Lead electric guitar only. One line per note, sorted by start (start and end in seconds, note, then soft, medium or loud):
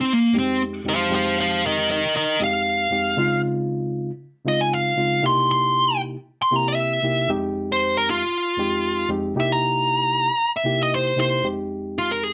0.01 0.13 C4 medium
0.13 0.36 A#3 medium
0.39 0.61 C4 medium
0.89 1.13 C5 medium
0.89 1.12 F5 medium
1.15 1.37 C5 medium
1.15 1.38 F5 medium
1.40 1.63 C5 medium
1.40 1.64 F5 medium
1.66 1.88 A#4 medium
1.66 1.89 D#5 medium
1.91 2.13 A#4 medium
1.91 2.15 D#5 medium
2.16 2.39 A#4 medium
2.16 2.40 D#5 medium
2.44 3.42 F5 loud
4.48 4.60 D#5 medium
4.61 4.72 G#5 medium
4.74 5.23 F5 medium
5.26 5.50 C6 loud
5.51 6.00 C6 loud
6.42 6.56 C6 medium
6.56 6.67 A#5 medium
6.68 7.29 E5 loud
7.72 7.95 C5 medium
7.97 8.08 A#4 medium
8.10 9.09 F4 loud
9.40 9.51 E5 medium
9.52 10.51 A#5 medium
10.57 10.80 E5 medium
10.83 10.93 D#5 medium
10.95 11.19 C5 medium
11.20 11.44 C5 loud
11.98 12.10 F4 medium
12.11 12.23 A#4 medium
12.23 12.33 G#4 medium